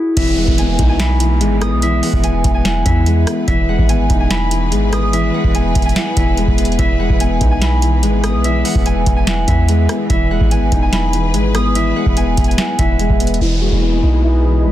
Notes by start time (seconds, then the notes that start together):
Already playing: E4 F#4 G#4
0.17 E1 E3 B3 G#4 B4 E5, kick, closed hi-hat, crash, downlifter
0.37 G#3 F#5
0.48 E1, kick
0.58 B3 G#5, closed hi-hat
0.79 B1 D#4, kick, closed hi-hat
0.89 G#5
0.99 E4 B5, snare, closed hi-hat
1.20 E3, closed hi-hat
1.41 G#1 G#3, closed hi-hat
1.61 B3 D#6, cross-stick, closed hi-hat
1.72 B1
1.82 E3 E5, closed hi-hat
2.03 G#3 F#5, open hi-hat
2.13 E1, kick
2.23 B3 G#5, closed hi-hat
2.44 E1, kick, closed hi-hat
2.54 G#5
2.65 E4 F#5, snare, closed hi-hat
2.85 E2 E3 E5, kick, closed hi-hat
3.06 G#3, closed hi-hat
3.27 B3, cross-stick, closed hi-hat
3.48 E1 E3 B3 E5, kick, closed hi-hat
3.69 G#3 F#5
3.79 G#1, kick
3.89 B3 G#5, closed hi-hat
4.10 E1 D#4, kick, closed hi-hat
4.20 G#5
4.30 E4 B5, snare, closed hi-hat
4.51 E3, closed hi-hat
4.72 G#1 G#3, closed hi-hat
4.93 B3 D#6, cross-stick, closed hi-hat
5.13 E3 E5, closed hi-hat
5.34 G#3 F#5
5.44 E1, kick
5.55 B3 G#5, closed hi-hat
5.75 E1, kick, closed hi-hat
5.82 G#5, closed hi-hat
5.89 closed hi-hat
5.96 E4 F#5, snare, closed hi-hat
6.17 E1 E3 E5, kick, closed hi-hat
6.37 G#3, closed hi-hat
6.48 E1, kick
6.58 B3, closed hi-hat
6.65 closed hi-hat
6.72 closed hi-hat
6.79 E1 E3 E5, kick, closed hi-hat
7.00 G#3 F#5
7.10 E1, kick
7.20 B3 G#5, closed hi-hat
7.41 B1 D#4, kick, closed hi-hat
7.51 G#5
7.61 E4 B5, snare, closed hi-hat
7.82 E3, closed hi-hat
8.03 G#1 G#3, closed hi-hat
8.23 B3 D#6, cross-stick, closed hi-hat
8.34 B1
8.44 E3 E5, closed hi-hat
8.65 G#3 F#5, open hi-hat
8.75 E1, kick
8.86 B3 G#5, closed hi-hat
9.06 E1, kick, closed hi-hat
9.16 G#5
9.27 E4 F#5, snare, closed hi-hat
9.48 E2 E3 E5, kick, closed hi-hat
9.69 G#3, closed hi-hat
9.89 B3, cross-stick, closed hi-hat
10.10 E1 E3 G#4 B4 E5, kick, closed hi-hat
10.31 G#3 F#5
10.41 G#1, kick
10.51 B3 G#5, closed hi-hat
10.72 E1 D#4, kick, closed hi-hat
10.82 G#5
10.92 E4 B5, snare, closed hi-hat
11.13 E3, closed hi-hat
11.34 G#1 G#3, closed hi-hat
11.55 B3 D#6, cross-stick, closed hi-hat
11.75 E3 E5, closed hi-hat
11.96 G#3 F#5
12.06 E1, kick
12.17 B3 G#5, closed hi-hat
12.37 E1, kick, closed hi-hat
12.44 G#5, closed hi-hat
12.51 closed hi-hat
12.58 E4 F#5, snare, closed hi-hat
12.79 E1 E3 E5, kick, closed hi-hat
12.99 G#3, closed hi-hat
13.10 E1, kick
13.20 B3, closed hi-hat
13.27 closed hi-hat
13.34 closed hi-hat
13.41 E1 E3 E4 G#4 D#5 G#5 B5, downlifter
13.61 G#3 F#4
13.72 E1
13.82 B3 G#4
14.03 B1 D#4
14.13 G#4
14.23 E4 B4
14.45 E3
14.65 G#1 G#3